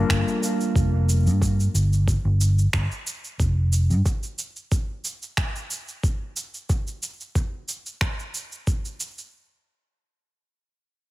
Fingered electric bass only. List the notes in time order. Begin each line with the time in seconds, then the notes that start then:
0.10 G1
0.75 F1
1.26 G2
1.74 G1
2.25 G1
2.74 G1
3.40 F1
3.90 G2